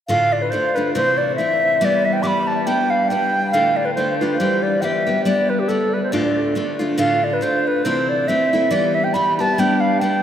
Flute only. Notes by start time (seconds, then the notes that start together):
0.08 F5
0.33 D5
0.42 B4
0.50 C5
0.75 B4
0.94 C5
1.18 D5
1.36 E5
1.80 E5
1.85 D5
2.05 E5
2.13 G5
2.23 D6
2.27 B5
2.47 A5
2.67 G5
2.90 F5
3.09 G5
3.51 F5
3.76 D5
3.85 B4
3.95 C5
4.19 B4
4.38 C5
4.63 D5
4.81 E5 G5
5.25 D5
5.50 B4
5.59 G4
5.68 A4
5.94 B4
6.03 C5
6.12 D5
6.99 F5
7.24 D5
7.33 B4
7.43 C5
7.67 B4
7.84 C5
8.09 D5
8.28 E5
8.71 D5
8.95 E5
9.04 G5
9.14 B5
9.37 A5 B5
9.56 G5 A5
9.80 F5
9.99 G5